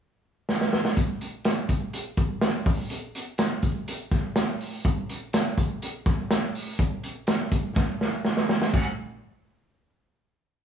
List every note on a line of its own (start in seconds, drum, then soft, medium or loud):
0.49 snare medium
0.61 snare medium
0.73 snare medium
0.85 snare medium
0.97 kick medium
0.97 closed hi-hat medium
1.21 closed hi-hat medium
1.44 snare medium
1.44 closed hi-hat medium
1.69 kick medium
1.69 closed hi-hat medium
1.93 closed hi-hat medium
2.17 kick medium
2.17 closed hi-hat medium
2.41 snare loud
2.41 closed hi-hat medium
2.66 kick loud
2.66 open hi-hat medium
2.90 closed hi-hat medium
3.15 closed hi-hat medium
3.38 snare loud
3.38 closed hi-hat medium
3.63 kick medium
3.63 closed hi-hat medium
3.88 closed hi-hat medium
4.11 kick medium
4.11 snare soft
4.11 closed hi-hat medium
4.36 snare loud
4.36 closed hi-hat medium
4.61 open hi-hat medium
4.85 kick loud
4.85 closed hi-hat medium
5.09 closed hi-hat medium
5.33 snare loud
5.33 closed hi-hat medium
5.58 kick medium
5.58 closed hi-hat medium
5.82 closed hi-hat medium
6.06 kick loud
6.06 snare soft
6.06 closed hi-hat medium
6.31 snare loud
6.31 closed hi-hat medium
6.55 open hi-hat medium
6.79 kick medium
6.79 closed hi-hat medium
7.04 closed hi-hat medium
7.27 snare medium
7.27 closed hi-hat medium
7.52 kick medium
7.52 closed hi-hat medium
7.76 kick medium
7.76 snare medium
8.01 snare medium
8.25 snare medium
8.37 snare medium
8.49 snare medium
8.62 snare medium
8.74 kick medium
8.74 crash medium